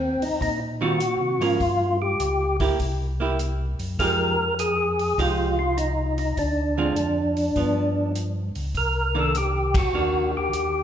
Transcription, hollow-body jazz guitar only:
0.81 D#3 G3 C4 F4
1.41 F3 A#3 C#4
2.60 A#3 E4 G4
3.20 A#3 E4 G4
4.00 F3 G#3 D#4 G4
5.19 F3 G#3 D#4 G4
6.78 D3 G#3 C4 F4
7.57 F3 B3
9.15 D#3 A#3 D4
9.94 D#3 A#3 D4

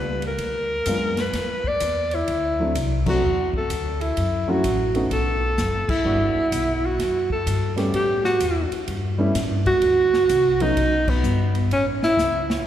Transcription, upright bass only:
Already playing: C#2
0.39 D2
0.86 F#2
1.33 F2
1.81 E2
2.28 D2
2.75 C2
3.23 E2
3.70 D2
4.17 F#2
4.64 A1
5.11 B1
5.58 F#1
5.89 muted upright bass stroke
6.05 G1
6.35 muted upright bass stroke
6.52 B1
6.99 F#2
7.46 G2
7.93 A2
8.40 E2
8.71 muted upright bass stroke
8.88 G2
9.35 A2
9.50 G2
9.66 E2
9.82 D2
10.29 C2
10.77 B1
11.23 G1
11.71 A1
12.17 C#2

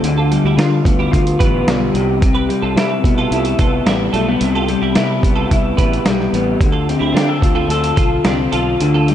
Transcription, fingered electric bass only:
0.03 D2
0.44 D2
0.57 D3
0.85 D2
1.13 D2
1.40 A1
1.67 B1
1.94 C2
2.63 C2
2.76 C3
3.04 B2
3.31 C2
3.59 C2
3.86 A1
4.13 B1
4.41 C2
4.82 C2
4.96 C3
5.23 C2
5.51 C2
5.78 A1
6.05 B1
6.33 A1
6.60 D2
7.01 D2
7.14 D3
7.42 D2
7.68 D2
7.97 B1
8.25 C2
8.53 B1
8.80 D2

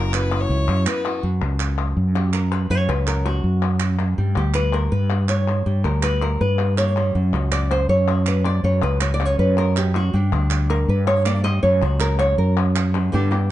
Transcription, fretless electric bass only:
Already playing: F#1
0.49 C#2
0.68 F#2
1.23 F#2
1.41 C#2
1.97 F#2
2.70 F#2
2.88 C#2
3.44 F#2
4.18 G2
4.36 D2
4.92 G2
5.66 G2
5.84 D2
6.41 G2
7.15 F#2
7.33 C#2
7.89 F#2
8.64 F#2
8.83 C#2
9.39 F#2
10.14 G2
10.32 D2
10.88 G2
11.63 F#2
11.82 C#2
12.38 F#2
13.14 G2

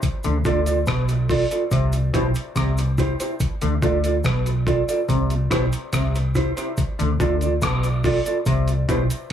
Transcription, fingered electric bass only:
0.26 D2
0.46 D2
0.88 B1
1.72 C2
2.15 B1
2.57 C2
3.63 D2
3.83 D2
4.25 B1
5.10 C2
5.52 B1
5.94 C2
7.01 D2
7.21 D2
7.63 B1
8.47 C2
8.90 B1

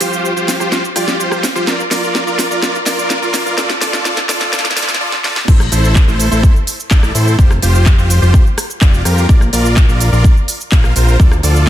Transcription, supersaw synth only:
0.01 F4 G4 C5
0.36 F4 G4 C5
0.60 F4 G4 C5
0.96 F4 G4 D5
1.20 F4 G4 C5
1.55 F4 G4 C5
1.67 F4 A#4 D5
1.91 F4 A#4 D5
2.27 F4 A#4 D5
2.51 F4 A#4 D5
2.62 F4 A#4 D5
2.86 F4 A#4 D5
3.22 F4 A#4 D5
3.46 F4 A#4 D5
3.58 F4 A4 D5
3.81 F4 A4 D5
4.05 F4 A4 D5
4.29 F4 A4 D5
4.53 F4 A4 D5
4.77 F4 A4 D5
5.01 F4 A4 D5
5.24 F4 A4 D5
5.48 E4 A4 C5
5.72 E4 A4 C5
6.08 E4 A4 C5
6.32 E4 A4 C5
6.91 E4 A4 D5
7.15 E4 A4 C5
7.39 G4
7.62 F4 G4 C5
7.98 F4 G4 C5
8.22 F4 G4 C5
8.81 F4 G4 D5
9.05 F4 G4 A#4
9.29 D5
9.53 F4 A#4 D5
9.89 F4 A#4 D5
10.13 F4 A#4 D5
10.72 F4 A#4 F5
10.96 F4 A#4 C5
11.43 F4 A4 D5

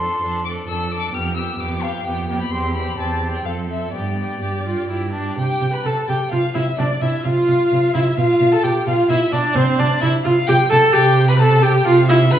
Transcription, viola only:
0.00 D4
0.23 D4
0.46 D4
0.68 D4
0.90 D4
1.14 B3
1.36 B3
1.59 B3
1.82 B3
2.05 B3
2.27 B3
2.51 C4
2.75 C4
2.98 C4
3.21 C4
3.45 C4
3.68 C4
3.93 B3
4.17 B3
4.41 G4
4.66 F4
4.90 E4
5.13 D4
5.37 G4
5.73 B4
5.86 A4
6.09 G4
6.32 F4
6.54 E4
6.79 D4
7.01 E4
7.24 F4
7.94 E4
8.17 F4
8.53 A4
8.63 G4
8.87 F4
9.10 E4
9.32 D4
9.55 C4
9.79 D4
10.01 E4
10.25 F4
10.48 G4
10.70 A4
10.93 G4
11.29 B4
11.39 A4
11.62 G4
11.85 F4
12.09 E4
12.31 B4

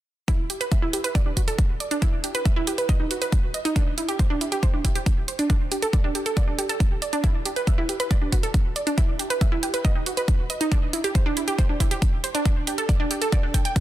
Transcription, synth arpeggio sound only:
0.28 E4
0.50 G4
0.61 B4
0.72 E5
0.82 E4
0.93 G4
1.04 B4
1.15 D5
1.26 D4
1.37 F#4
1.48 A4
1.80 D5
1.91 D4
2.02 E4
2.24 G4
2.35 B4
2.46 E5
2.56 E4
2.67 G4
2.78 B4
2.89 D#5
3.00 D#4
3.11 F#4
3.22 B4
3.54 D#5
3.65 D#4
3.76 D4
3.98 E4
4.08 G4
4.19 C5
4.30 D4
4.41 E4
4.52 G4
4.63 C5
4.74 D4
4.85 E4
4.95 G4
5.28 C5
5.39 D4
5.50 D4
5.72 G4
5.82 A4
5.93 D5
6.04 D4
6.15 G4
6.26 A4
6.37 D5
6.48 D4
6.59 G4
6.69 A4
7.02 D5
7.13 D4
7.24 E4
7.45 G4
7.56 B4
7.67 E5
7.78 E4
7.89 G4
8.00 B4
8.11 D5
8.22 D4
8.32 F#4
8.43 A4
8.76 D5
8.87 D4
8.98 E4
9.19 G4
9.30 B4
9.41 E5
9.52 E4
9.63 G4
9.74 B4
9.85 D#5
9.95 D#4
10.06 F#4
10.17 B4
10.50 D#5
10.61 D#4
10.72 D4
10.93 E4
11.04 G4
11.15 C5
11.26 D4
11.37 E4
11.48 G4
11.59 C5
11.69 D4
11.80 E4
11.91 G4
12.24 C5
12.35 D4
12.45 D4
12.67 G4
12.78 A4
12.89 D5
13.00 D4
13.11 G4
13.22 A4
13.32 D5
13.43 D4
13.54 G5
13.65 G5

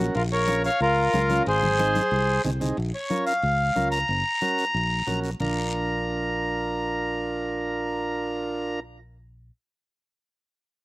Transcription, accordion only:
0.15 F4 A#4
0.32 A#4 C#5
0.66 C#5 F5
0.82 F4 A#4
1.48 G#4 C5
2.95 C#5
3.27 F5
3.92 A#5
5.40 A#5

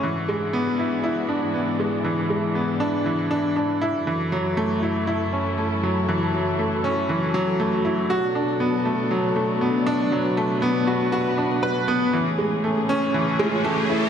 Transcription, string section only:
0.03 G#2 E3 D4 F#4
2.05 E4
4.06 F#2 F#3 E4 A4
8.09 B2 D4 A4
10.12 B4
12.13 A2 E3 C#4 G#4

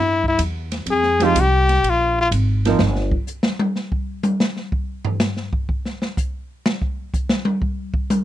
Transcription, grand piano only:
1.21 F3 G#3 C4 D#4 G4
2.66 F3 A#3 C4 D#4 A#4

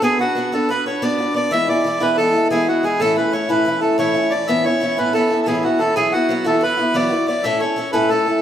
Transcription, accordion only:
0.03 G#4
0.20 F#4
0.53 A4
0.70 B4
0.86 C#5
1.03 D5
1.36 D5
1.52 E5
1.69 D5
2.01 B4
2.17 A4
2.51 G#4
2.68 F#4
2.84 G#4
3.00 A4
3.17 B4
3.33 C#5
3.50 B4
3.81 A4
3.98 C#5
4.30 D5
4.48 E5
4.64 C#5
4.98 B4
5.13 A4
5.42 A4
5.47 G#4
5.63 F#4
5.79 A4
5.96 G#4
6.12 F#4
6.46 A4
6.63 B4
6.96 D5
7.28 D5
7.44 E5
7.60 C#5
7.92 B4
8.09 A4

